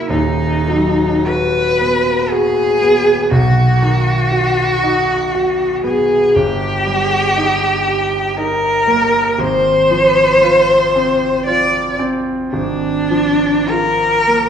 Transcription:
0.00 0.12 A#3 medium
0.00 0.13 F#4 medium
0.09 3.27 D#1 medium
0.09 3.27 D#2 medium
0.09 1.29 D#4 loud
0.68 1.60 F#3 medium
1.26 2.11 F#4 medium
1.26 2.33 B4 loud
1.81 2.61 B3 medium
2.31 3.12 F#4 medium
2.31 3.32 G#4 loud
2.83 3.32 B3 medium
3.30 6.31 B1 medium
3.30 5.83 F#4 loud
3.82 4.63 D#3 medium
4.31 5.13 F#4 medium
4.83 5.65 D#4 medium
5.35 6.15 F#4 medium
5.83 6.35 B3 medium
5.83 6.36 G#4 loud
6.34 9.35 G1 medium
6.34 8.38 G4 loud
6.86 7.67 G3 medium
7.37 8.17 D#4 medium
7.88 8.67 G4 medium
8.37 9.18 D#4 medium
8.37 9.42 A#4 loud
8.87 9.38 A#3 medium
9.39 12.47 G#1 medium
9.39 11.46 C5 loud
9.91 10.74 F3 medium
10.42 11.25 F4 medium
10.96 11.77 C4 medium
11.47 12.30 F4 medium
11.47 11.97 D5 loud
11.99 12.51 C4 medium
12.51 14.49 G#1 medium
12.51 13.71 D4 loud
13.10 14.05 F3 medium
13.69 14.49 F4 medium
13.69 14.49 A#4 loud
14.27 14.49 A#3 medium

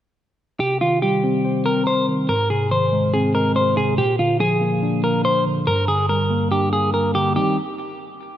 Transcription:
0.60 1.66 C3 medium
0.60 0.79 G4 loud
0.81 1.87 D#3 medium
0.81 1.00 F4 medium
1.02 2.08 G3 medium
1.02 1.62 G4 medium
1.24 1.64 C4 loud
1.45 2.29 C5 medium
1.66 2.29 C4 medium
1.66 1.84 A#4 medium
1.87 2.05 C5 medium
2.08 2.29 D#3 medium
2.29 3.34 G#2 medium
2.29 2.48 A#4 loud
2.50 3.56 C3 medium
2.50 2.69 G#4 medium
2.71 3.77 D#3 medium
2.71 3.11 C5 medium
2.92 3.33 G#3 loud
3.14 3.98 C4 medium
3.14 3.32 G#4 medium
3.34 3.98 G#3 medium
3.34 3.53 A#4 medium
3.56 3.75 C5 medium
3.77 3.98 C3 medium
3.77 3.96 G#4 medium
3.98 5.04 A#2 medium
3.98 4.17 G4 loud
4.19 5.24 D3 medium
4.19 4.38 F4 medium
4.40 5.46 F3 medium
4.40 5.00 G#4 loud
4.61 5.03 A#3 loud
4.82 5.67 D4 medium
5.04 5.67 A#3 medium
5.04 5.22 A#4 medium
5.25 5.44 C5 medium
5.46 5.67 D3 medium
5.67 6.73 G2 medium
5.67 5.86 A#4 loud
5.88 6.94 D3 medium
5.88 6.07 G#4 medium
6.09 7.15 G3 medium
6.09 6.49 A#4 medium
6.30 6.72 A#3 medium
6.51 7.36 D4 medium
6.51 6.70 G4 medium
6.73 7.36 A#3 medium
6.73 6.91 G#4 medium
6.94 7.13 A#4 medium
7.15 7.36 D3 medium
7.15 7.34 G4 medium
7.36 7.56 D#3 medium
7.36 7.56 G3 medium
7.36 7.56 C4 medium
7.36 7.56 D#4 loud
7.36 7.56 G4 medium

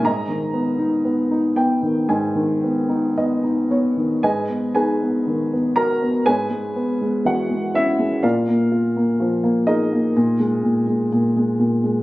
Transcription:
0.03 2.08 G#2 medium
0.03 3.14 D#5 medium
0.03 3.13 A#5 medium
0.28 1.81 D#3 soft
0.53 1.03 B3 soft
0.79 1.30 D#4 soft
1.05 1.55 B3 soft
1.31 2.88 D#4 soft
1.56 2.62 B3 soft
1.56 2.06 G5 medium
1.82 2.34 D#3 soft
2.09 4.19 G#2 medium
2.09 3.12 G#5 medium
2.35 3.95 D#3 soft
2.64 3.16 B3 soft
2.89 3.42 D#4 soft
3.17 3.69 B3 soft
3.17 3.67 D#5 medium
3.43 4.21 D#4 soft
3.71 4.22 B3 soft
3.71 4.20 C#5 medium
3.97 4.22 D#3 soft
4.23 6.22 G#2 soft
4.23 4.72 G#4 soft
4.23 4.72 B4 soft
4.23 4.72 D#5 medium
4.23 4.71 G#5 medium
4.49 5.01 B3 soft
4.75 6.22 D#4 soft
4.75 5.72 G#4 medium
4.75 5.72 B4 medium
4.75 5.72 G#5 medium
5.02 5.52 B3 soft
5.27 6.24 D#3 soft
5.53 6.01 B3 soft
5.76 6.25 F#4 soft
5.76 6.23 A#4 medium
5.76 6.22 A#5 medium
6.03 6.26 B3 soft
6.25 8.20 G#2 medium
6.25 7.21 G#4 medium
6.25 7.22 B4 medium
6.25 7.22 C#5 soft
6.25 7.22 G#5 medium
6.50 7.00 G#3 soft
6.76 8.20 B3 soft
7.02 7.49 G#3 soft
7.25 8.20 E3 soft
7.25 7.72 F#4 medium
7.25 7.77 F#5 medium
7.50 7.97 G#3 soft
7.74 8.22 C#4 soft
7.74 8.20 E4 medium
7.74 8.25 E5 medium
7.99 8.22 G#3 soft
8.23 10.11 A#2 soft
8.23 8.70 F4 medium
8.23 9.63 A#4 medium
8.23 9.63 D5 medium
8.23 9.71 F5 medium
8.48 8.95 A#3 soft
8.72 10.12 F4 soft
8.97 9.42 A#3 soft
9.20 10.13 F3 medium
9.44 9.91 A#3 soft
9.67 11.08 D#4 soft
9.67 11.08 G#4 medium
9.67 11.08 A#4 medium
9.67 11.07 D#5 medium
9.93 10.15 A#3 soft
10.16 10.62 A#2 medium
10.40 10.85 G#3 medium
10.63 11.11 A#2 soft
10.87 11.35 G#3 soft
11.12 11.58 A#2 soft
11.36 11.82 G#3 soft
11.59 12.03 A#2 medium
11.84 12.03 G#3 soft

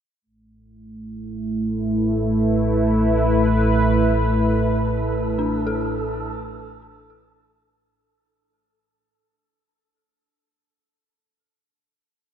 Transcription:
0.22 7.94 A2 medium
0.22 7.83 A3 medium
0.26 7.95 A1 medium
0.59 7.82 E4 medium
1.17 7.83 B4 medium
4.03 7.85 A4 medium
5.39 11.11 D4 medium
5.67 11.39 A4 medium

